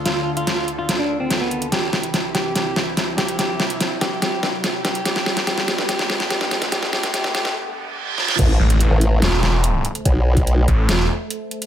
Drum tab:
CC |----------------|----------------|----------------|----------------|
HH |x--xx-x-x---x-xx|x--xx-x-x---x-xx|x--xx-x-x---x-xx|x--xx-x-x---x-xx|
SD |o---o---o---o---|o-o-o-o-o-o-o-o-|o-o-o-o-o-o-o-o-|oooooooooooooooo|
BD |----------------|----------------|----------------|----------------|

CC |----------------|x---------------|----------------|
HH |x--xx-x---------|x--xx-x-x---x-xx|x--xx-x-x---x-xx|
SD |oooooooo------oo|--------o-o-----|--------o-------|
BD |----------------|o---------------|o--o--o---------|